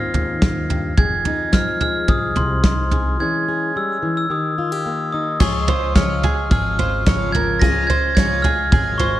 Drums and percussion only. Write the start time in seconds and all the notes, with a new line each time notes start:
0.14 floor tom
0.42 kick, snare, floor tom
0.70 floor tom
0.97 kick, floor tom
1.25 floor tom
1.53 kick, snare, floor tom
1.80 floor tom
2.08 kick, floor tom
2.36 floor tom
2.64 kick, snare, floor tom
2.91 floor tom
5.40 kick, floor tom, crash
5.68 floor tom
5.95 kick, snare, floor tom
6.23 floor tom
6.51 kick, floor tom
6.79 floor tom
7.07 kick, snare, floor tom
7.35 floor tom
7.61 kick, floor tom
7.90 floor tom
8.17 kick, snare, floor tom
8.44 floor tom
8.72 kick, floor tom
8.99 floor tom